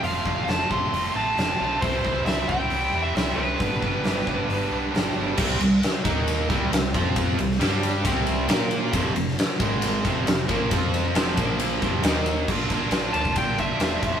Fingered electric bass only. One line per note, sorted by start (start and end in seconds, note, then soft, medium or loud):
0.02 0.20 F1 medium
0.25 0.43 F1 medium
0.46 0.64 F1 medium
0.70 0.87 F1 medium
0.91 1.09 F1 loud
1.15 1.32 A1 medium
1.36 1.54 F1 medium
1.59 1.76 B1 medium
1.83 1.99 C2 medium
2.04 2.21 C2 medium
2.25 2.42 C2 medium
2.49 2.66 C2 medium
2.70 2.88 C2 medium
2.93 3.10 E2 medium
3.14 3.32 C2 medium
3.36 3.54 C2 medium
3.60 3.77 G1 medium
3.82 3.99 G1 medium
4.04 4.22 G1 medium
4.27 4.44 G1 medium
4.48 4.65 G1 loud
4.70 4.88 B1 medium
4.92 5.10 G1 medium
5.15 5.32 G1 medium
5.38 5.59 C2 medium
5.60 5.81 C2 medium
6.05 6.46 D#2 medium
6.50 6.70 C2 loud
6.71 6.92 C2 medium
6.94 7.35 F2 medium
7.38 7.59 C2 medium
7.60 8.01 G2 medium
8.05 8.46 C2 medium
8.49 8.90 A#2 medium
8.93 9.14 F1 medium
9.15 9.36 F1 medium
9.60 10.01 G#1 medium
10.05 10.25 F1 medium
10.27 10.47 F1 medium
10.49 10.69 A#1 medium
10.71 11.12 F2 medium
11.15 11.35 F1 medium
11.38 11.78 A#1 medium
11.82 12.02 F1 loud
12.03 12.44 D#2 medium
12.48 12.65 A#1 medium
12.71 12.88 A#1 medium
12.90 13.08 A#1 medium
13.13 13.31 D2 medium
13.36 13.71 A#1 medium
13.78 13.97 E1 medium
14.02 14.20 F1 medium